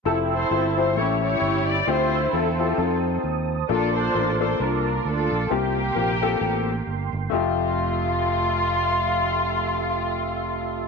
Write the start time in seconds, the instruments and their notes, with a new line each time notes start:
0.05 fingered electric bass F1, string section C4 E4 A4, grand piano E4 F4 G4 A4, tonewheel organ A4 E5 G5 E6
0.33 string section E4 A4 C5
0.51 fingered electric bass G1, grand piano E4 F4 G4 A4
0.77 grand piano E4 F4 G4 C5, string section C5
0.96 fingered electric bass A1, grand piano A2 A#3 E4 G4 A4, string section E4 G4 C#5, tonewheel organ C#5 A5
1.01 grand piano C#4
1.22 string section E4 G4 C#5
1.41 fingered electric bass G1
1.68 string section D5
1.87 fingered electric bass D2, grand piano D3 C4 E4 F4 G4, string section E4 F4 C5, tonewheel organ C5 G5 E6
2.33 fingered electric bass E2, grand piano C4 E4 F4 A4, string section C4 F4 A4
2.59 grand piano C4 E4 F4 G4
2.78 fingered electric bass F2, grand piano C4 D#4 F4 A4, tonewheel organ A5 D#6
3.24 fingered electric bass D#2
3.69 fingered electric bass A#1, grand piano A#2 A#3 D4 F4 A4, tonewheel organ A#3 D6, string section D4 F4 A4
3.95 string section F4 A4 C5
4.14 fingered electric bass A1, grand piano A#3 D4 F4 A#4
4.40 grand piano A#3 D4 F4 A4, string section C5
4.60 fingered electric bass C2, string section D4 F4 A#4
5.05 fingered electric bass D2, string section D4 F4 A4
5.31 fingered electric bass A#1
5.50 fingered electric bass C2, grand piano C3 A#3 C4 F4 G4, string section A#3 G4, tonewheel organ G5 C6
5.95 fingered electric bass A#1, grand piano A#3 C4 F4 A#4
6.22 grand piano A#3 C4 F4 A4
6.41 fingered electric bass A1
6.87 fingered electric bass G1
7.13 fingered electric bass G1
7.30 fingered electric bass F1, grand piano F2 A3 F4 E5, tonewheel organ A3 F4 G4 E5, string section F4
7.34 grand piano G4